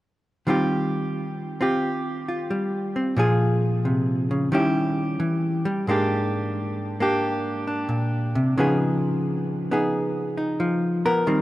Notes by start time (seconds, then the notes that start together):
0.47 D#3 G3 C4 F4 G4
1.61 C4 F4 G4
2.28 F4
2.51 G3
2.96 C4
3.17 A#2 F3 F4 G#4
3.85 C3
4.31 C#3
4.52 D#3 G3 C#4 E4 G4
5.20 E3
5.65 G3
5.87 G#2 G#3 A#3 D4 G4
7.00 A#3 D4 G4
7.67 D4
7.89 A#2
8.35 C3
8.58 C#3 F3 B3 D#4 G#4
9.71 B3 D#4 G#4
10.37 D#4
10.60 F3
11.05 B3 A#4
11.27 D#3 G3 C4